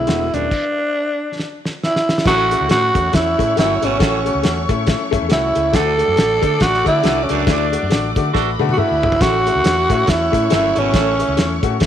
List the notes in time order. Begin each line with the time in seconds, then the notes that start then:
Already playing: D4 E4 G#4
0.07 E1 D2 D3 G#3 B3 F#4, snare, closed hi-hat
0.33 D#1 F#2 D3 G#3 B3 D4 E4, closed hi-hat
0.51 kick, crash
1.39 snare
1.65 snare
1.83 E4 E6, snare
1.96 snare
2.09 snare
2.18 snare
2.25 A1 A2 A3 C#4 E4 F#4 C#5 C#6 F#6, kick, snare, crash
2.51 A3 C#4 E4, closed hi-hat
2.61 C#2
2.69 A2 A3 C#4 E4 F#4 F#6, snare, closed hi-hat
2.94 E2 A3 C#4 F#4, kick, closed hi-hat
3.12 E2 A3 C#4 E4 E6, kick, snare, closed hi-hat
3.38 A2 A3 C#4 E4, kick, closed hi-hat
3.56 G1 F#2 A3 C#4 E4 F#4 E6, snare, closed hi-hat
3.82 G#1 B2 A3 C#4 E4 C#6, closed hi-hat
3.99 A1 A2 A3 C#4 F#4, kick, snare, closed hi-hat
4.25 A3 C#4 F#4, closed hi-hat
4.35 C#2
4.42 E2 A3 C#4 F#4, snare, closed hi-hat
4.69 A2 A3 C#4 E4, kick, closed hi-hat
4.86 A3 C#4 E4, kick, snare, closed hi-hat
5.11 F#2 A3 C#4 E4, kick, closed hi-hat
5.22 E2
5.29 C2 A3 C#4 E4 F#4 E6, snare, closed hi-hat
5.55 C#2 A3 C#4 E4, closed hi-hat
5.72 D2 A3 D4 F#4 A4 D5 D6 A6, kick, snare, closed hi-hat
5.98 A3 D4 F#4, closed hi-hat
6.08 F#2
6.16 A1 A3 D4 F#4, snare, closed hi-hat
6.42 D3 A3 D4 A4, kick, closed hi-hat
6.60 A1 A3 D4 F#4 F#6, kick, snare, closed hi-hat
6.74 snare
6.84 D3 A3 D4 E4 F#4 E6, kick, closed hi-hat
7.03 C2 D2 A3 D4 F#4, snare, closed hi-hat
7.22 C#4 C#6
7.29 C#2 F#2 A3 D4 F#4 D6, closed hi-hat
7.46 D2 A3 D4 E4, kick, snare, closed hi-hat
7.72 A3 D4 F#4, closed hi-hat
7.83 F#2
7.90 A1 A3 D4 F#4, snare, closed hi-hat
8.16 D3 A3 D4 F#4, kick, closed hi-hat
8.33 A1 A3 D4 F#4 A4 B4 B5, kick, snare
8.60 D3 A3 D4 F#4, high tom
8.69 F#4 F#6, high tom
8.77 A3 D4 E4 F#4 E6, mid tom
8.91 D2
9.03 G1 A3 D4 F#4, floor tom
9.12 G#1, floor tom
9.20 A1 A2 A3 C#4 E4 F#4 C#5 C#6 F#6, kick, snare, closed hi-hat
9.46 A3 C#4 E4, closed hi-hat
9.55 C#2
9.64 E2 A3 C#4 E4, snare, closed hi-hat
9.89 A2 A3 C#4 E4, kick, closed hi-hat
10.06 E2 A3 C#4 E4 F#4 E6, kick, snare, closed hi-hat
10.32 A2 A3 C#4 E4, kick, closed hi-hat
10.50 G1 F#2 A3 C#4 E4 E6, snare, closed hi-hat
10.75 G#1 B2 A3 C#4 E4 C#6, closed hi-hat
10.93 A1 A2 A3 C#4 E4, kick, snare, closed hi-hat
11.19 A3 C#4 E4, closed hi-hat
11.28 C#2
11.37 E2 A3 C#4 E4, snare, closed hi-hat
11.63 A2 A3 C#4 F#4, kick, closed hi-hat
11.80 E2 A3 C#4 E4, kick, snare, closed hi-hat